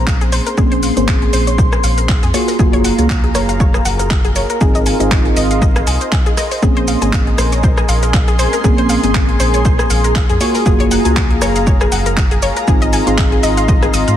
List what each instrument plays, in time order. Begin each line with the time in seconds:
Already playing: analog synth bass A#1, fm electric piano A#3 C4 C#4 G#4, analog synth pad G#4 C5 A#5, ambient pad C6
0.07 synth arpeggio sound F5, kick, clap, shaker
0.21 synth arpeggio sound G#4, closed hi-hat, shaker
0.32 synth arpeggio sound C5, open hi-hat, shaker
0.46 synth arpeggio sound A#4, closed hi-hat, shaker
0.57 analog synth bass A#1, fm electric piano A#3 C4 C#4 G#4, synth arpeggio sound G#4, analog synth pad C6, kick, shaker
0.72 synth arpeggio sound C5, closed hi-hat
0.83 synth arpeggio sound F5, open hi-hat, shaker
0.96 analog synth bass G#1, fm electric piano A#3 C4 C#4 G#4, synth arpeggio sound C5, closed hi-hat, shaker
1.08 synth arpeggio sound F5, kick, clap, shaker
1.22 synth arpeggio sound G#4, closed hi-hat
1.33 analog synth bass A#1, synth arpeggio sound C5, open hi-hat, shaker
1.47 synth arpeggio sound C#5, closed hi-hat, shaker
1.58 synth arpeggio sound C5, kick, shaker
1.72 synth arpeggio sound G#4, cross-stick, shaker
1.84 analog synth bass A#1, synth arpeggio sound F5, open hi-hat, shaker
1.98 synth arpeggio sound A#4, closed hi-hat, shaker
2.09 synth arpeggio sound F5, kick, clap, shaker
2.23 analog synth bass F2, synth arpeggio sound G#4, closed hi-hat, shaker
2.34 fm electric piano A#3 F4 F#4 G#4, synth arpeggio sound C#5, analog synth pad F5 A#5, open hi-hat, shaker
2.48 synth arpeggio sound A#4, open hi-hat, shaker
2.59 analog synth bass F#1, fm electric piano A#3 F4 F#4 G#4, synth arpeggio sound G#4, kick, shaker
2.73 synth arpeggio sound C#5, closed hi-hat
2.84 synth arpeggio sound F#5, open hi-hat, shaker
2.98 analog synth bass C#2, fm electric piano A#3 F4 F#4 G#4, ambient pad A#4, synth arpeggio sound C#5, closed hi-hat, shaker
3.10 synth arpeggio sound F#5, kick, clap, shaker
3.24 synth arpeggio sound G#4, closed hi-hat
3.35 analog synth bass F#1, synth arpeggio sound C#5, cross-stick, open hi-hat, shaker
3.49 synth arpeggio sound F5, closed hi-hat, shaker
3.60 synth arpeggio sound C#5, kick, shaker
3.74 synth arpeggio sound G#4, cross-stick, shaker
3.85 analog synth bass F#1, synth arpeggio sound F#5, open hi-hat, shaker
3.99 synth arpeggio sound A#4, closed hi-hat, shaker
4.11 synth arpeggio sound F#5, kick, clap, shaker
4.25 synth arpeggio sound G#4, closed hi-hat, shaker
4.36 synth arpeggio sound C#5, open hi-hat, shaker
4.50 synth arpeggio sound A#4, closed hi-hat, shaker
4.61 analog synth bass G#1, fm electric piano C4 D#4 F4 G#4, synth arpeggio sound G#4, analog synth pad D#5 F5 C6, kick, shaker
4.75 synth arpeggio sound D#5, closed hi-hat, shaker
4.86 synth arpeggio sound G#5, open hi-hat, shaker
5.00 analog synth bass G#1, fm electric piano C4 D#4 F4 G#4, synth arpeggio sound D#5, closed hi-hat, shaker
5.11 synth arpeggio sound G#5, kick, clap, shaker
5.25 synth arpeggio sound G#4, ambient pad D#5, closed hi-hat
5.36 analog synth bass G#1, synth arpeggio sound D#5, open hi-hat, shaker
5.51 synth arpeggio sound F5, closed hi-hat, shaker
5.62 synth arpeggio sound D#5, kick, shaker
5.76 synth arpeggio sound G#4, cross-stick, closed hi-hat, shaker
5.87 analog synth bass C2, synth arpeggio sound G#5, open hi-hat, shaker
6.01 synth arpeggio sound C5, closed hi-hat, shaker
6.12 synth arpeggio sound G#5, kick, clap, shaker
6.26 synth arpeggio sound G#4, closed hi-hat, shaker
6.37 synth arpeggio sound D#5, cross-stick, open hi-hat, shaker
6.51 synth arpeggio sound C5, open hi-hat, shaker
6.62 analog synth bass A#1, fm electric piano A#3 C4 C#4 G#4, synth arpeggio sound G#4, ambient pad G#4, analog synth pad A#4 G#5, kick, shaker
6.77 synth arpeggio sound C5, closed hi-hat
6.87 synth arpeggio sound F5, ambient pad C6, open hi-hat, shaker
7.01 analog synth bass G#1, fm electric piano A#3 C4 C#4 G#4, synth arpeggio sound G#5, closed hi-hat, shaker
7.13 synth arpeggio sound F5, kick, clap, shaker
7.27 synth arpeggio sound G#4, closed hi-hat
7.38 analog synth bass A#1, synth arpeggio sound C5, cross-stick, open hi-hat, shaker
7.52 synth arpeggio sound C#5, closed hi-hat, shaker
7.63 synth arpeggio sound C5, kick, shaker
7.77 synth arpeggio sound G#4, cross-stick, shaker
7.89 analog synth bass A#1, synth arpeggio sound F5, open hi-hat, shaker
8.03 synth arpeggio sound A#4, closed hi-hat, shaker
8.14 synth arpeggio sound F5, kick, clap, shaker
8.28 synth arpeggio sound G#4, closed hi-hat, shaker
8.39 synth arpeggio sound C5, open hi-hat, shaker
8.53 synth arpeggio sound A#4, closed hi-hat, shaker
8.64 analog synth bass A#1, fm electric piano A#3 C4 C#4 G#4, synth arpeggio sound G#4, kick, shaker
8.78 synth arpeggio sound C5, closed hi-hat
8.89 synth arpeggio sound F5, open hi-hat, shaker
9.03 analog synth bass G#1, fm electric piano A#3 C4 C#4 G#4, synth arpeggio sound G#5, closed hi-hat, shaker
9.15 synth arpeggio sound F5, kick, clap, shaker
9.29 synth arpeggio sound G#4, closed hi-hat
9.40 analog synth bass A#1, synth arpeggio sound C5, open hi-hat, shaker
9.54 synth arpeggio sound C#5, closed hi-hat, shaker
9.65 synth arpeggio sound C5, kick, shaker
9.79 synth arpeggio sound G#4, cross-stick, shaker
9.90 analog synth bass A#1, synth arpeggio sound F5, open hi-hat, shaker
10.04 synth arpeggio sound A#4, closed hi-hat, shaker
10.15 synth arpeggio sound F5, kick, clap, shaker
10.30 analog synth bass F2, synth arpeggio sound G#4, closed hi-hat, shaker
10.40 fm electric piano A#3 F4 F#4 G#4, analog synth pad G#4 F5 A#5, synth arpeggio sound C#5, open hi-hat, shaker
10.55 synth arpeggio sound A#4, open hi-hat, shaker
10.66 analog synth bass F#1, fm electric piano A#3 F4 F#4 G#4, synth arpeggio sound G#4, kick, shaker
10.80 synth arpeggio sound C#5, closed hi-hat
10.91 synth arpeggio sound F#5, open hi-hat, shaker
11.05 analog synth bass C#2, fm electric piano A#3 F4 F#4 G#4, synth arpeggio sound G#5, ambient pad A#5, closed hi-hat, shaker
11.16 synth arpeggio sound F#5, kick, clap, shaker
11.30 synth arpeggio sound G#4, closed hi-hat
11.42 analog synth bass F#1, synth arpeggio sound C#5, cross-stick, open hi-hat, shaker
11.56 synth arpeggio sound F5, closed hi-hat, shaker
11.67 synth arpeggio sound C#5, kick, shaker
11.81 synth arpeggio sound G#4, cross-stick, shaker
11.92 analog synth bass F#1, synth arpeggio sound F#5, open hi-hat, shaker
12.06 synth arpeggio sound A#4, closed hi-hat, shaker
12.17 synth arpeggio sound F#5, kick, clap, shaker
12.31 synth arpeggio sound G#4, closed hi-hat, shaker
12.42 synth arpeggio sound C#5, open hi-hat, shaker
12.57 synth arpeggio sound A#4, closed hi-hat, shaker
12.67 analog synth bass G#1, fm electric piano C4 D#4 F4 G#4, ambient pad F4, synth arpeggio sound G#4, analog synth pad D#5 C6, kick, shaker
12.82 synth arpeggio sound D#5, closed hi-hat, shaker
12.93 synth arpeggio sound G#5, open hi-hat, shaker
13.06 analog synth bass G#1, fm electric piano C4 D#4 F4 G#4, synth arpeggio sound C6, closed hi-hat, shaker
13.18 synth arpeggio sound G#5, kick, clap, shaker
13.29 synth arpeggio sound G#4, ambient pad G#5, closed hi-hat
13.33 ambient pad D#5
13.43 analog synth bass G#1, synth arpeggio sound D#5, open hi-hat, shaker
13.57 synth arpeggio sound F5, closed hi-hat, shaker
13.68 synth arpeggio sound D#5, kick, shaker
13.82 synth arpeggio sound G#4, cross-stick, closed hi-hat, shaker
13.94 analog synth bass G#1, synth arpeggio sound D#6, open hi-hat, shaker
14.08 analog synth bass G#2, synth arpeggio sound F5, closed hi-hat, shaker